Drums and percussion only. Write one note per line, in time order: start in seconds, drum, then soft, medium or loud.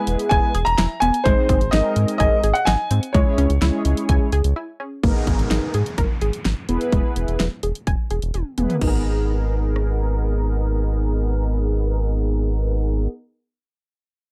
0.07 closed hi-hat medium
0.19 closed hi-hat medium
0.31 kick loud
0.31 closed hi-hat medium
0.55 closed hi-hat medium
0.66 closed hi-hat medium
0.78 snare loud
0.78 closed hi-hat medium
1.02 closed hi-hat medium
1.14 closed hi-hat medium
1.26 kick loud
1.26 closed hi-hat medium
1.49 kick loud
1.49 closed hi-hat medium
1.61 closed hi-hat soft
1.73 snare loud
1.73 closed hi-hat medium
1.96 closed hi-hat medium
2.08 closed hi-hat medium
2.20 kick loud
2.20 closed hi-hat medium
2.44 closed hi-hat medium
2.55 closed hi-hat medium
2.67 snare loud
2.67 closed hi-hat medium
2.91 closed hi-hat medium
3.03 closed hi-hat medium
3.14 kick loud
3.14 closed hi-hat medium
3.38 closed hi-hat medium
3.50 closed hi-hat soft
3.62 snare loud
3.62 closed hi-hat medium
3.85 closed hi-hat medium
3.97 closed hi-hat medium
4.09 kick loud
4.09 closed hi-hat medium
4.32 closed hi-hat medium
4.44 closed hi-hat medium
5.04 kick loud
5.04 closed hi-hat medium
5.27 kick medium
5.27 closed hi-hat medium
5.39 closed hi-hat soft
5.51 snare loud
5.51 closed hi-hat medium
5.74 closed hi-hat medium
5.86 closed hi-hat medium
5.98 kick medium
5.98 closed hi-hat medium
6.21 closed hi-hat medium
6.33 closed hi-hat medium
6.45 snare loud
6.45 closed hi-hat medium
6.69 closed hi-hat medium
6.81 closed hi-hat soft
6.92 kick loud
6.92 closed hi-hat medium
7.16 closed hi-hat medium
7.28 closed hi-hat soft
7.40 snare loud
7.40 closed hi-hat medium
7.63 closed hi-hat medium
7.75 closed hi-hat medium
7.87 kick medium
7.87 closed hi-hat medium
8.11 closed hi-hat medium
8.22 closed hi-hat medium
8.34 closed hi-hat medium
8.34 high tom medium
8.58 closed hi-hat medium
8.58 mid tom medium
8.70 closed hi-hat soft
8.70 floor tom medium
8.81 kick loud
8.81 crash medium
9.76 cross-stick medium